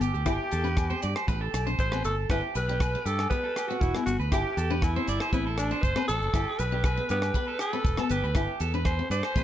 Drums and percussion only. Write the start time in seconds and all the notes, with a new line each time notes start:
0.01 closed hi-hat, maracas
0.15 maracas
0.26 kick, cross-stick, low agogo, maracas
0.52 closed hi-hat, maracas
0.66 maracas
0.77 kick, cross-stick, low agogo, maracas
1.02 closed hi-hat, maracas
1.16 cross-stick, low agogo, maracas
1.28 kick, maracas
1.54 cross-stick, closed hi-hat, low agogo, maracas
1.68 maracas
1.79 kick, maracas
1.92 cross-stick, low agogo
2.05 closed hi-hat, maracas
2.30 kick, cross-stick, low agogo, maracas
2.55 closed hi-hat, maracas
2.80 kick, cross-stick, low agogo, maracas
3.06 closed hi-hat, maracas
3.19 cross-stick, low agogo, maracas
3.31 kick, maracas
3.56 cross-stick, closed hi-hat, low agogo, maracas
3.70 maracas
3.81 kick, maracas
3.95 cross-stick, low agogo
4.06 closed hi-hat, maracas
4.21 maracas
4.32 kick, cross-stick, low agogo, maracas
4.57 closed hi-hat, maracas
4.82 kick, cross-stick, low agogo, maracas
5.08 closed hi-hat, maracas
5.20 cross-stick, low agogo, maracas
5.33 kick, maracas
5.57 cross-stick, closed hi-hat, low agogo, maracas
5.72 maracas
5.83 kick, maracas
5.96 cross-stick, low agogo
6.08 closed hi-hat, maracas
6.22 maracas
6.33 kick, cross-stick, low agogo, maracas
6.59 closed hi-hat, maracas
6.84 kick, cross-stick, low agogo, maracas
7.09 closed hi-hat, maracas
7.22 cross-stick, low agogo, maracas
7.34 kick, maracas
7.59 cross-stick, closed hi-hat, low agogo, maracas
7.74 maracas
7.85 kick, maracas
7.97 cross-stick, low agogo
8.10 closed hi-hat, maracas
8.24 maracas
8.35 kick, cross-stick, low agogo, maracas
8.60 closed hi-hat, maracas
8.74 maracas
8.85 kick, cross-stick, low agogo, maracas
9.11 closed hi-hat, maracas
9.23 cross-stick, low agogo
9.36 kick, maracas